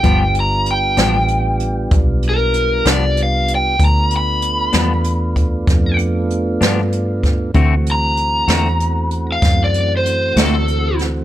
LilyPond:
<<
  \new Staff \with { instrumentName = "Lead electric guitar" } { \time 12/8 \key g \mixolydian \tempo 4. = 64 g''8 bes''8 g''2 r8 bes'4 d''8 f''8 g''8 | bes''8 b''2. r2 r8 | r8 bes''2~ bes''16 f''8 d''8 c''8. a'4 r8 | }
  \new Staff \with { instrumentName = "Tonewheel organ" } { \time 12/8 \key g \mixolydian <g b d' f'>1. | <a b d' f'>1. | <e a c' fis'>1. | }
  \new Staff \with { instrumentName = "Clean electric guitar" } { \time 12/8 \key g \mixolydian <g, f b d'>8 r4 <g, f b d'>8 r2 r8 <g, f b d'>8 r4 | r4. <g, f b d'>8 r2 r8 <g, f b d'>8 r4 | <d a c' fis'>8 r4 <d a c' fis'>8 r2 r8 <d a c' fis'>8 r4 | }
  \new Staff \with { instrumentName = "Fingered electric bass" } { \clef bass \time 12/8 \key g \mixolydian g,,4. a,,4. b,,4. c,4. | d,4. e,4. f,4. g,4. | d,4. e,4. fis,4. d,4. | }
  \new DrumStaff \with { instrumentName = "Drums" } \drummode { \time 12/8 <hh bd>8 hh8 hh8 <hh sn>8 hh8 hh8 <hh bd>8 hh8 hh8 <hh sn>8 hh8 hh8 | <hh bd>8 hh8 hh8 <hh sn>8 hh8 <hh bd>8 <hh bd sn>8 hh8 hh8 <hh sn>8 hh8 <hh bd sn>8 | <hh bd>8 hh8 hh8 <hh sn>8 hh8 hh8 <hh bd sn>8 hh8 hh8 <hh sn>8 hh8 <hh sn>8 | }
>>